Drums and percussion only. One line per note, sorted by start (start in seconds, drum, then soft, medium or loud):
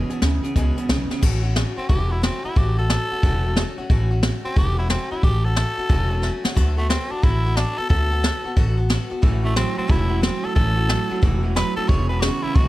0.10 closed hi-hat medium
0.22 snare loud
0.22 closed hi-hat medium
0.44 closed hi-hat medium
0.56 kick loud
0.56 closed hi-hat medium
0.77 closed hi-hat medium
0.89 snare loud
0.89 closed hi-hat medium
1.11 snare medium
1.22 kick loud
1.22 crash loud
1.56 snare loud
1.56 open hi-hat medium
1.89 kick loud
1.89 open hi-hat medium
2.23 snare loud
2.23 open hi-hat medium
2.56 kick loud
2.56 open hi-hat soft
2.90 snare loud
2.90 open hi-hat medium
3.23 kick loud
3.23 open hi-hat medium
3.56 snare loud
3.90 kick loud
3.90 open hi-hat medium
4.23 snare loud
4.23 open hi-hat medium
4.56 kick loud
4.56 open hi-hat medium
4.90 snare loud
4.90 open hi-hat soft
5.23 kick loud
5.23 open hi-hat soft
5.56 snare loud
5.56 open hi-hat medium
5.89 kick loud
5.89 open hi-hat medium
6.23 snare medium
6.45 snare loud
6.57 kick loud
6.57 open hi-hat medium
6.57 splash medium
6.90 snare loud
6.90 open hi-hat medium
7.23 kick loud
7.23 open hi-hat soft
7.57 snare loud
7.57 open hi-hat soft
7.90 kick loud
7.90 open hi-hat medium
8.24 snare loud
8.56 kick loud
8.56 open hi-hat medium
8.90 snare loud
8.90 open hi-hat medium
9.23 kick loud
9.23 open hi-hat medium
9.56 snare loud
9.56 open hi-hat medium
9.89 kick loud
9.89 open hi-hat medium
10.23 snare loud
10.23 open hi-hat medium
10.56 kick loud
10.56 open hi-hat medium
10.89 snare loud
10.89 open hi-hat medium
11.23 kick loud
11.23 open hi-hat medium
11.56 snare loud
11.56 open hi-hat medium
11.89 kick loud
11.89 open hi-hat medium
12.22 snare loud
12.22 open hi-hat medium
12.55 kick loud
12.55 open hi-hat medium